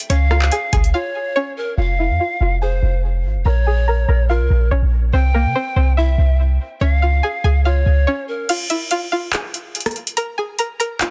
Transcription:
0.00 closed hi-hat
0.10 808-style bass C#2, synth pluck C#4 C#5, pan flute F5, closed hi-hat
0.31 synth pluck F4 F5, cross-stick
0.42 clap
0.51 synth pluck G#4 G#5, closed hi-hat
0.73 808-style bass C#2, synth pluck G#4 G#5, kick, closed hi-hat
0.84 closed hi-hat
0.93 synth pluck F4 F5, pan flute C#5
1.36 synth pluck C#4 C#5
1.57 pan flute A#4
1.77 808-style bass F1, synth pluck F4 F5, pan flute F5
1.99 synth pluck E4 E5
2.10 808-style bass F2
2.20 synth pluck F4 F5
2.41 808-style bass F1, synth pluck F4 F5
2.61 synth pluck G#4 G#5, pan flute C5
2.83 808-style bass F1
3.25 808-style bass G#1
3.36 808-style bass F1
3.45 808-style bass A#1, synth pluck A#4 A#5, pan flute C#5
3.67 synth pluck G#4 G#5
3.88 synth pluck A#4 A#5
4.08 808-style bass A#1, synth pluck A#4 A#5
4.29 synth pluck F4 F5, pan flute A#4
4.40 808-style bass C2
4.50 808-style bass A#1
4.71 808-style bass A#1, synth pluck C#4 C#5
4.82 808-style bass A#1
5.13 808-style bass C2, synth pluck C4 C5, pan flute G5
5.34 synth pluck A#3 A#4
5.45 808-style bass C3
5.55 synth pluck C4 C5
5.76 808-style bass C2, synth pluck C4 C5
5.97 synth pluck E4 E5, pan flute E5
6.18 808-style bass C2
6.81 808-style bass C#2, synth pluck C#4 C#5, pan flute E5
6.93 pan flute F5
7.02 synth pluck F4 F5
7.23 synth pluck G#4 G#5
7.44 808-style bass C#2, synth pluck G#4 G#5
7.64 synth pluck F4 F5, pan flute C#5
7.86 808-style bass C#2
8.07 synth pluck C#4 C#5
8.28 pan flute A#4
8.49 synth pluck F4 F5, closed hi-hat, crash
8.70 synth pluck E4 E5, closed hi-hat
8.91 synth pluck F4 F5, closed hi-hat
9.12 synth pluck F4 F5
9.33 synth pluck G#4 G#5, clap, closed hi-hat
9.54 closed hi-hat
9.75 closed hi-hat
9.80 closed hi-hat
9.86 cross-stick, closed hi-hat
9.91 closed hi-hat
9.96 closed hi-hat
10.07 closed hi-hat
10.17 synth pluck A#4 A#5, closed hi-hat
10.38 synth pluck G#4 G#5
10.59 synth pluck A#4 A#5, closed hi-hat
10.80 synth pluck A#4 A#5, closed hi-hat
11.01 synth pluck F4 F5, clap, closed hi-hat

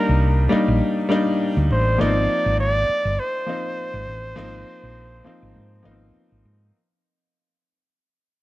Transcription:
Already playing: grand piano G3 A#3 D4 D#4, flugelhorn A#4
0.09 fingered electric bass C2
0.49 grand piano G3 A#3 D4 D#4, muted fingered electric bass stroke
0.68 fingered electric bass A#1
1.09 grand piano G3 A#3 D4 D#4
1.57 fingered electric bass D2
1.71 fingered electric bass A1, flugelhorn C5
1.98 fingered electric bass G#1, grand piano F3 A#3 B3 D#4, flugelhorn D5
2.06 grand piano C4
2.46 fingered electric bass G#1
2.60 flugelhorn D5
2.89 muted fingered electric bass stroke
3.05 fingered electric bass G1
3.19 flugelhorn C5
3.46 grand piano F3 A#3 C4 D#4
3.94 fingered electric bass G#1
4.08 fingered electric bass A1
4.36 fingered electric bass G#1, grand piano F3 A#3 C4 D#4
4.83 fingered electric bass A#1
5.24 grand piano F3 A#3 C4 D#4
5.43 fingered electric bass G#1
5.56 fingered electric bass G#2
5.83 fingered electric bass G#1, grand piano F3 A#3 B3 D#4
5.91 grand piano C4
6.16 muted fingered electric bass stroke
6.32 fingered electric bass G#1
6.45 fingered electric bass G#2

